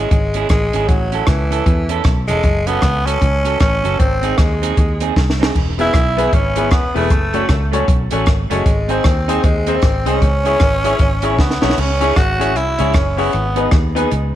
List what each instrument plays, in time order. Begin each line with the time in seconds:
Already playing: tenor saxophone G#3
0.11 fingered electric bass G#1, kick, closed hi-hat
0.34 clean electric guitar C#4 E4 G#4, closed hi-hat
0.49 fingered electric bass A1, tenor saxophone G#3, kick, cross-stick, closed hi-hat
0.73 fingered electric bass G#1, clean electric guitar C#4 E4 G#4, closed hi-hat
0.88 fingered electric bass A1, tenor saxophone F#3, kick, closed hi-hat
1.12 clean electric guitar C#4 E4 A4, closed hi-hat
1.27 fingered electric bass C#2, tenor saxophone E3, kick, cross-stick, closed hi-hat
1.50 clean electric guitar C#4 E4 A4, closed hi-hat
1.66 fingered electric bass E2, kick, closed hi-hat
1.89 clean electric guitar C#4 E4 A4, closed hi-hat
2.04 fingered electric bass B1, kick, cross-stick, closed hi-hat
2.28 fingered electric bass E1, tenor saxophone G#3, clean electric guitar C#4 E4 A4, closed hi-hat
2.43 fingered electric bass F#1, kick, closed hi-hat
2.67 tenor saxophone B3, clean electric guitar C#4 F#4 A4, closed hi-hat
2.82 fingered electric bass C#2, kick, cross-stick, closed hi-hat
3.05 clean electric guitar C#4 F#4 A4, tenor saxophone C#4, closed hi-hat
3.22 fingered electric bass C#2, kick, closed hi-hat
3.45 clean electric guitar C#4 F#4 A4, closed hi-hat
3.60 fingered electric bass A1, tenor saxophone C#4, kick, cross-stick, closed hi-hat
3.83 fingered electric bass F#1, clean electric guitar C#4 F#4 A4, closed hi-hat
3.99 fingered electric bass G#1, tenor saxophone C4, kick, closed hi-hat
4.22 clean electric guitar C4 D#4 G#4, closed hi-hat
4.38 fingered electric bass D#2, tenor saxophone G#3, kick, cross-stick, closed hi-hat
4.62 clean electric guitar C4 D#4 G#4, closed hi-hat
4.77 fingered electric bass D#2, kick, closed hi-hat
5.00 clean electric guitar C4 D#4 G#4, closed hi-hat
5.16 fingered electric bass C2, kick, snare
5.30 snare
5.40 clean electric guitar C4 D#4 G#4, snare
5.55 fingered electric bass E1, kick, crash
5.78 upright piano B3 E4 G#4 B4, clean electric guitar B3 E4 G#4, tenor saxophone E4, closed hi-hat
5.94 fingered electric bass B1, kick, cross-stick, closed hi-hat
6.17 clean electric guitar B3 E4 G#4, upright piano B3 E4 G#4 B4, closed hi-hat
6.33 fingered electric bass G#1, tenor saxophone C#4, kick, closed hi-hat
6.56 clean electric guitar B3 E4 G#4, upright piano B3 E4 G#4 B4, closed hi-hat
6.71 fingered electric bass E1, tenor saxophone B3, kick, cross-stick, closed hi-hat
6.94 fingered electric bass E1, tenor saxophone A3, upright piano B3 E4 G#4 B4, clean electric guitar B3 E4 G#4, open hi-hat
7.10 fingered electric bass F#1, kick, closed hi-hat
7.33 clean electric guitar A3 C#4 F#4, upright piano C#4 F#4 A4 C#5, closed hi-hat
7.49 fingered electric bass C#2, kick, cross-stick, closed hi-hat
7.72 clean electric guitar A3 C#4 F#4, upright piano C#4 F#4 A4 C#5, closed hi-hat
7.88 fingered electric bass B1, kick, closed hi-hat
8.11 fingered electric bass A1, clean electric guitar A3 C#4 F#4, upright piano C#4 F#4 A4 C#5, closed hi-hat
8.26 fingered electric bass G#1, kick, cross-stick, closed hi-hat
8.50 fingered electric bass F#1, tenor saxophone G#3, clean electric guitar A3 C#4 F#4, upright piano C#4 F#4 A4 C#5, closed hi-hat
8.66 fingered electric bass G#1, kick, closed hi-hat
8.88 clean electric guitar C4 D#4 G#4, upright piano C4 D#4 G#4 C5, tenor saxophone C4, closed hi-hat
9.04 fingered electric bass D#2, kick, cross-stick, closed hi-hat
9.28 clean electric guitar C4 D#4 G#4, upright piano C4 D#4 G#4 C5, closed hi-hat
9.44 fingered electric bass D#2, tenor saxophone G#3, kick, closed hi-hat
9.67 clean electric guitar C4 D#4 G#4, upright piano C4 D#4 G#4 C5, closed hi-hat
9.76 tenor saxophone C4
9.82 fingered electric bass G#1, kick, cross-stick, closed hi-hat
10.06 fingered electric bass C2, upright piano C4 D#4 G#4 C5, clean electric guitar C4 D#4 G#4, tenor saxophone C#4, closed hi-hat
10.22 fingered electric bass C#2, kick, closed hi-hat
10.44 clean electric guitar C#4 E4 G#4, upright piano C#4 E4 G#4 C#5, closed hi-hat
10.60 fingered electric bass G#1, kick, cross-stick, closed hi-hat
10.84 upright piano C#4 E4 G#4 C#5, clean electric guitar C#4 E4 G#4, closed hi-hat
10.99 fingered electric bass G#1, kick, closed hi-hat
11.22 upright piano C#4 E4 G#4 C#5, clean electric guitar C#4 E4 G#4, closed hi-hat
11.39 fingered electric bass C#2, tenor saxophone B3, kick, snare
11.51 snare
11.61 fingered electric bass B1, upright piano C#4 E4 G#4 C#5, clean electric guitar C#4 E4 G#4, snare
11.70 snare
11.78 fingered electric bass C#2, tenor saxophone C#4, crash
12.00 upright piano C#4 E4 G#4 C#5, clean electric guitar C#4 E4 G#4, closed hi-hat
12.16 fingered electric bass G#1, tenor saxophone F#4, kick, cross-stick, closed hi-hat
12.39 upright piano C#4 E4 G#4 C#5, clean electric guitar C#4 E4 G#4, closed hi-hat
12.56 fingered electric bass C2, tenor saxophone E4, closed hi-hat
12.78 fingered electric bass C#2, upright piano C#4 E4 G#4 C#5, clean electric guitar C#4 E4 G#4, closed hi-hat
12.93 fingered electric bass F#1, tenor saxophone C#4, kick, cross-stick, closed hi-hat
13.17 tenor saxophone B3, clean electric guitar C#4 E4 G#4, upright piano C#4 E4 G#4 C#5, open hi-hat
13.33 fingered electric bass G#1, closed hi-hat
13.55 clean electric guitar B3 D#4 G#4, upright piano B3 D#4 G#4 B4, closed hi-hat
13.71 fingered electric bass D#2, kick, cross-stick, closed hi-hat
13.95 upright piano B3 D#4 G#4 B4, clean electric guitar B3 D#4 G#4, closed hi-hat
14.11 fingered electric bass C#2, closed hi-hat